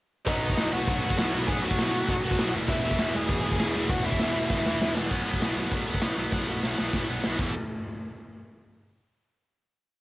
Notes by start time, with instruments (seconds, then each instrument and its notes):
0.27 picked electric bass B1, distorted electric guitar B2 F#3 B3, lead electric guitar D#4 D#5, kick, open hi-hat
0.43 distorted electric guitar B2 F#3 B3
0.50 kick
0.57 picked electric bass B1, distorted electric guitar B2 F#3 B3, snare, open hi-hat
0.72 picked electric bass B1, distorted electric guitar B2 F#3 B3, lead electric guitar F#4 F#5
0.87 picked electric bass B1, distorted electric guitar B2 F#3 B3, kick, open hi-hat
1.02 picked electric bass B1, distorted electric guitar B2 F#3 B3
1.10 kick
1.17 picked electric bass B1, distorted electric guitar B2 F#3 B3, lead electric guitar F#4 F#5, snare, open hi-hat
1.33 picked electric bass B1, distorted electric guitar B2 F#3 B3
1.47 picked electric bass B1, distorted electric guitar B2 F#3 B3, lead electric guitar G#4 G#5, kick, open hi-hat
1.62 distorted electric guitar B2 F#3 B3, lead electric guitar F#4 F#5
1.71 kick
1.78 picked electric bass B1, distorted electric guitar B2 F#3 B3, snare, open hi-hat
1.93 picked electric bass B1, distorted electric guitar B2 F#3 B3
2.08 picked electric bass B1, distorted electric guitar B2 F#3 B3, kick, open hi-hat
2.24 picked electric bass B1, distorted electric guitar B2 F#3 B3
2.31 kick
2.38 picked electric bass B1, distorted electric guitar B2 F#3 B3, snare, open hi-hat
2.54 picked electric bass E1, distorted electric guitar E2 B2 E3
2.68 picked electric bass E1, distorted electric guitar E2 B2 E3, lead electric guitar E4 E5, kick, crash
2.84 distorted electric guitar E2 B2 E3
2.91 kick
2.98 picked electric bass E1, distorted electric guitar E2 B2 E3, snare, open hi-hat
3.13 picked electric bass E1, distorted electric guitar E2 B2 E3, lead electric guitar G#4 G#5
3.29 picked electric bass E1, distorted electric guitar E2 B2 E3, kick, open hi-hat
3.44 picked electric bass E1, distorted electric guitar E2 B2 E3
3.52 kick
3.59 picked electric bass E1, distorted electric guitar E2 B2 E3, lead electric guitar G#4 G#5, snare, open hi-hat
3.75 picked electric bass E1, distorted electric guitar E2 B2 E3
3.89 picked electric bass E1, distorted electric guitar E2 B2 E3, lead electric guitar F#4 F#5, kick, open hi-hat
4.04 distorted electric guitar E2 B2 E3, lead electric guitar E4 E5
4.12 kick
4.19 picked electric bass E1, distorted electric guitar E2 B2 E3, snare, open hi-hat
4.34 picked electric bass E1, distorted electric guitar E2 B2 E3
4.50 picked electric bass E1, distorted electric guitar E2 B2 E3, kick, snare
4.65 picked electric bass E1, distorted electric guitar E2 B2 E3, snare
4.81 picked electric bass E1, distorted electric guitar E2 B2 E3, snare
4.96 picked electric bass E1, distorted electric guitar E2 B2 E3, snare
5.11 picked electric bass B1, distorted electric guitar B2 F#3 B3, kick, crash
5.27 picked electric bass B1, distorted electric guitar B2 F#3 B3
5.34 kick
5.41 picked electric bass B1, distorted electric guitar B2 F#3 B3, snare, open hi-hat
5.56 picked electric bass B1, distorted electric guitar B2 F#3 B3
5.72 picked electric bass B1, distorted electric guitar B2 F#3 B3, kick, open hi-hat
5.87 picked electric bass B1, distorted electric guitar B2 F#3 B3
5.94 kick
6.01 picked electric bass B1, distorted electric guitar B2 F#3 B3, snare, open hi-hat
6.18 picked electric bass B1, distorted electric guitar B2 F#3 B3
6.32 picked electric bass B1, distorted electric guitar B2 F#3 B3, kick, snare
6.49 picked electric bass B1, distorted electric guitar B2 F#3 B3
6.63 picked electric bass B1, distorted electric guitar B2 F#3 B3, snare
6.79 picked electric bass B1, distorted electric guitar B2 F#3 B3, snare
6.93 picked electric bass B1, distorted electric guitar B2 F#3 B3, kick, snare
7.10 picked electric bass B1, distorted electric guitar B2 F#3 B3
7.24 picked electric bass B1, distorted electric guitar B2 F#3 B3, snare
7.39 picked electric bass E1, distorted electric guitar E2 B2 E3, kick, crash